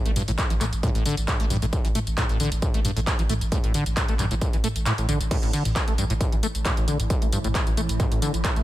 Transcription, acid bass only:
0.06 A3
0.16 G2
0.28 A2
0.50 E3
0.61 A3
0.83 A2
0.95 A2
1.06 D3
1.40 A3
1.50 G2
1.62 A2
1.85 E3
1.95 A3
2.18 A2
2.29 A2
2.40 D3
2.74 A3
2.85 G2
2.97 A2
3.19 E3
3.30 A3
3.52 A2
3.64 A2
3.74 D3
4.09 A3
4.19 G2
4.31 A2
4.53 E3
4.64 A3
4.86 A2
4.98 A2
5.09 D3
5.31 A2
5.43 A2
5.53 D3
5.88 A3
5.98 G2
6.10 A2
6.32 E3
6.43 A3
6.65 A2
6.77 A2
6.88 D3
7.22 A3
7.33 G2
7.44 A2
7.67 E3
7.77 A3
8.00 A2
8.12 A2
8.22 D3
8.56 A3

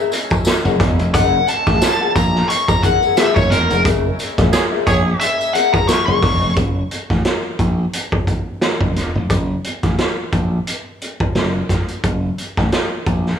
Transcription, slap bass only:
0.65 F#1
0.80 E1
0.99 F1
1.14 F#1
1.67 A1
2.16 A#1
3.36 F#1
3.51 E1
3.70 F1
3.85 F#1
4.38 A1
4.87 A#1
6.08 F#1
6.23 E1
6.42 F1
6.57 F#1
7.10 A1
7.59 A#1
8.81 F#1
8.96 E1
9.15 F1
9.30 F#1
9.83 A1
10.33 A#1
11.35 F#1
12.04 F#1
12.58 A1
13.07 A#1

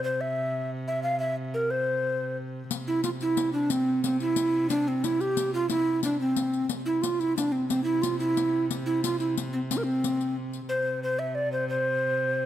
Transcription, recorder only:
0.04 C5
0.21 E5
0.88 E5
1.03 F5
1.20 E5
1.54 A#4
1.71 C5
2.87 E4
3.04 F4
3.22 E4
3.53 D4
3.71 C4
4.04 C4
4.21 E4
4.69 D4
4.88 C4
5.04 E4
5.21 G4
5.54 F4
5.69 E4
6.04 D4
6.21 C4
6.86 E4
7.02 F4
7.20 E4
7.37 D4
7.52 C4
7.69 C4
7.84 E4
8.02 F4
8.19 E4
8.86 E4
9.04 F4
9.19 E4
9.53 C4
9.71 C4
9.77 A#4
9.84 C4
10.69 C5
11.03 C5
11.19 E5
11.35 D5
11.52 C5
11.69 C5

